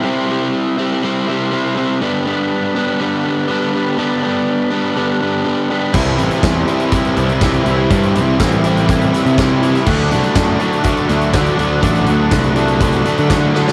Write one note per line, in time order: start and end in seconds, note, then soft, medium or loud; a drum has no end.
0.00 0.53 C3 medium
0.00 0.31 G3 loud
0.00 5.91 G4 medium
0.00 1.98 C5 medium
0.00 1.98 E5 medium
0.00 1.98 C6 medium
0.05 0.28 C4 loud
0.05 0.27 E4 loud
0.28 0.80 G3 medium
0.28 0.78 C4 medium
0.28 0.76 E4 medium
0.78 1.03 G3 medium
0.78 1.03 C4 medium
0.78 1.04 E4 medium
1.02 1.50 C3 medium
1.02 1.31 G3 loud
1.02 1.28 C4 loud
1.02 1.26 E4 loud
1.28 1.52 G3 medium
1.28 1.52 C4 medium
1.28 1.53 E4 medium
1.51 1.99 C3 medium
1.51 1.78 G3 medium
1.51 1.76 C4 medium
1.51 1.74 E4 medium
1.76 2.02 G3 medium
1.76 2.00 C4 medium
1.76 1.99 E4 medium
2.01 2.99 G2 medium
2.01 2.51 D3 loud
2.01 2.28 G3 medium
2.01 2.27 B3 loud
2.01 2.25 D4 medium
2.01 5.91 B4 medium
2.01 5.91 D5 medium
2.01 3.97 B5 medium
2.26 2.77 G3 medium
2.26 2.76 B3 medium
2.26 2.75 D4 medium
2.75 3.01 G3 medium
2.75 3.00 B3 medium
2.75 3.01 D4 medium
3.00 3.49 G2 medium
3.00 3.46 D3 loud
3.00 3.27 G3 loud
3.00 3.25 B3 loud
3.00 3.23 D4 loud
3.25 3.48 G3 medium
3.25 3.48 B3 medium
3.25 3.50 D4 medium
3.48 3.97 D3 medium
3.48 3.75 G3 medium
3.48 3.73 B3 medium
3.48 3.71 D4 medium
3.72 3.98 G3 medium
3.72 3.98 B3 medium
3.72 3.98 D4 medium
3.97 4.46 G2 medium
3.97 4.47 D3 loud
3.97 4.25 G3 loud
3.97 4.23 B3 medium
3.97 4.22 D4 loud
3.97 5.92 A5 medium
4.23 4.73 G3 medium
4.23 4.70 B3 medium
4.23 4.69 D4 medium
4.70 4.97 G3 medium
4.70 4.96 B3 medium
4.70 4.97 D4 medium
4.96 5.45 G2 medium
4.96 5.43 D3 loud
4.96 5.23 G3 loud
4.96 5.21 B3 loud
4.96 5.19 D4 medium
5.20 5.45 G3 medium
5.20 5.46 B3 medium
5.20 5.46 D4 medium
5.45 5.92 D3 medium
5.45 5.72 G3 medium
5.45 5.70 B3 medium
5.45 5.68 D4 medium
5.70 5.94 G3 medium
5.70 5.93 B3 medium
5.70 5.93 D4 medium
5.93 6.18 C2 loud
5.93 6.92 C3 medium
5.93 6.41 E3 loud
5.93 6.20 G3 loud
5.93 6.19 C4 loud
5.93 6.17 E4 medium
5.93 9.83 G4 medium
5.93 9.83 C5 medium
5.93 11.79 E5 medium
5.93 7.89 C6 medium
5.93 kick loud
5.93 crash loud
6.18 6.28 A1 medium
6.18 6.70 G3 medium
6.18 6.69 C4 medium
6.18 6.67 E4 medium
6.18 closed hi-hat medium
6.31 closed hi-hat soft
6.42 6.63 E2 medium
6.42 6.67 E3 medium
6.42 6.67 G3 medium
6.42 6.67 C4 medium
6.42 6.66 E4 medium
6.42 kick loud
6.42 snare loud
6.42 closed hi-hat medium
6.68 7.17 C3 medium
6.68 6.91 E3 medium
6.68 6.92 G3 medium
6.68 6.93 C4 medium
6.68 6.95 E4 medium
6.68 closed hi-hat medium
6.80 closed hi-hat soft
6.92 7.40 C3 medium
6.92 7.41 E3 medium
6.92 7.18 G3 medium
6.92 7.16 C4 medium
6.92 7.16 E4 loud
6.92 kick loud
6.92 closed hi-hat loud
7.05 closed hi-hat soft
7.16 7.57 C2 loud
7.16 7.41 G3 medium
7.16 7.42 C4 medium
7.16 7.43 E4 medium
7.16 closed hi-hat medium
7.29 closed hi-hat soft
7.41 7.88 C3 medium
7.41 7.91 E3 loud
7.41 7.67 G3 medium
7.41 7.65 C4 medium
7.41 7.64 E4 medium
7.41 kick loud
7.41 snare loud
7.41 closed hi-hat loud
7.53 closed hi-hat soft
7.65 7.86 C2 medium
7.65 7.90 G3 medium
7.65 7.91 C4 medium
7.65 7.92 E4 medium
7.65 closed hi-hat medium
7.90 8.17 G2 medium
7.90 8.39 C3 loud
7.90 8.39 E3 medium
7.90 8.16 G3 medium
7.90 8.15 C4 medium
7.90 8.14 E4 loud
7.90 9.85 B5 medium
7.90 kick loud
7.90 closed hi-hat loud
8.03 closed hi-hat medium
8.14 8.35 C2 medium
8.14 8.66 G3 medium
8.14 8.65 C4 medium
8.14 8.64 E4 medium
8.14 closed hi-hat medium
8.39 9.11 A1 medium
8.39 8.65 E3 medium
8.39 8.64 G3 medium
8.39 8.63 C4 medium
8.39 8.63 E4 medium
8.39 kick loud
8.39 snare loud
8.39 closed hi-hat loud
8.52 closed hi-hat soft
8.64 9.14 C3 medium
8.64 8.88 E3 medium
8.64 8.88 G3 medium
8.64 8.89 C4 medium
8.64 8.90 E4 medium
8.64 closed hi-hat medium
8.77 closed hi-hat medium
8.88 9.37 C3 medium
8.88 9.38 E3 medium
8.88 9.15 G3 loud
8.88 9.13 C4 loud
8.88 9.12 E4 loud
8.88 kick loud
8.88 closed hi-hat loud
9.01 closed hi-hat medium
9.13 9.38 G3 medium
9.13 9.39 C4 medium
9.13 9.40 E4 medium
9.13 snare soft
9.13 closed hi-hat medium
9.26 9.76 C3 medium
9.26 closed hi-hat medium
9.38 9.85 C3 medium
9.38 9.85 E3 medium
9.38 9.65 G3 medium
9.38 9.63 C4 medium
9.38 9.62 E4 medium
9.38 kick loud
9.38 snare loud
9.38 closed hi-hat loud
9.63 9.86 G3 medium
9.63 9.86 C4 medium
9.63 9.88 E4 medium
9.63 closed hi-hat medium
9.75 snare soft
9.75 closed hi-hat soft
9.86 10.13 D2 loud
9.86 10.83 D3 medium
9.86 10.14 F#3 medium
9.86 10.13 A3 loud
9.86 10.11 D4 loud
9.86 10.10 F#4 loud
9.86 13.72 F#4 medium
9.86 13.72 D5 medium
9.86 13.72 A5 medium
9.86 kick loud
9.86 crash loud
10.11 10.21 C2 medium
10.11 10.61 F#3 medium
10.11 10.60 A3 medium
10.11 10.59 D4 medium
10.11 10.37 F#4 medium
10.11 closed hi-hat medium
10.23 closed hi-hat soft
10.35 10.56 F#2 loud
10.35 10.61 D3 medium
10.35 10.61 A3 medium
10.35 10.60 D4 medium
10.35 10.59 F#4 medium
10.35 kick loud
10.35 snare loud
10.35 closed hi-hat loud
10.59 10.83 D3 medium
10.59 10.83 F#3 medium
10.59 10.84 A3 medium
10.59 10.85 D4 medium
10.59 10.85 F#4 medium
10.59 closed hi-hat medium
10.73 closed hi-hat soft
10.83 11.32 D3 loud
10.83 11.09 F#3 loud
10.83 11.08 A3 loud
10.83 11.06 D4 loud
10.83 11.07 F#4 medium
10.83 kick loud
10.83 closed hi-hat loud
10.97 closed hi-hat soft
11.08 11.50 D2 loud
11.08 11.33 F#3 medium
11.08 11.33 A3 medium
11.08 11.35 D4 medium
11.08 11.34 F#4 medium
11.08 snare soft
11.08 closed hi-hat medium
11.21 closed hi-hat soft
11.33 11.79 D3 medium
11.33 11.59 F#3 medium
11.33 11.58 A3 medium
11.33 11.56 D4 medium
11.33 11.56 F#4 loud
11.33 kick loud
11.33 snare loud
11.33 closed hi-hat loud
11.46 closed hi-hat soft
11.57 11.79 D2 medium
11.57 11.81 F#3 medium
11.57 11.82 A3 medium
11.57 11.83 D4 medium
11.57 11.83 F#4 medium
11.57 closed hi-hat medium
11.81 12.08 A1 loud
11.81 12.30 D3 medium
11.81 12.08 F#3 medium
11.81 12.08 A3 medium
11.81 12.05 D4 loud
11.81 12.05 F#4 loud
11.81 13.72 F#5 medium
11.81 kick loud
11.81 closed hi-hat loud
11.95 closed hi-hat medium
12.06 12.28 D2 medium
12.06 12.58 F#3 medium
12.06 12.56 A3 medium
12.06 12.54 D4 medium
12.06 12.32 F#4 medium
12.06 closed hi-hat medium
12.31 13.02 C2 medium
12.31 12.56 D3 medium
12.31 12.56 A3 medium
12.31 12.55 D4 medium
12.31 12.54 F#4 medium
12.31 kick loud
12.31 snare loud
12.31 closed hi-hat loud
12.44 closed hi-hat medium
12.55 12.79 D3 medium
12.55 12.81 F#3 medium
12.55 12.81 A3 medium
12.55 12.82 D4 medium
12.55 12.81 F#4 loud
12.55 closed hi-hat medium
12.68 closed hi-hat medium
12.80 13.28 D3 loud
12.80 13.07 F#3 loud
12.80 13.05 A3 loud
12.80 13.04 D4 loud
12.80 13.03 F#4 medium
12.80 kick loud
12.80 closed hi-hat loud
12.92 closed hi-hat medium
13.05 13.29 F#3 medium
13.05 13.30 A3 medium
13.05 13.31 D4 medium
13.05 13.29 F#4 medium
13.05 snare soft
13.05 closed hi-hat medium
13.18 13.69 D3 medium
13.18 closed hi-hat soft
13.29 13.72 D3 medium
13.29 13.56 F#3 medium
13.29 13.55 A3 medium
13.29 13.53 D4 medium
13.29 13.52 F#4 loud
13.29 kick loud
13.29 snare loud
13.29 closed hi-hat loud
13.53 13.72 F#3 medium
13.53 13.72 A3 medium
13.53 13.72 D4 medium
13.53 13.72 F#4 medium
13.53 snare medium
13.68 snare medium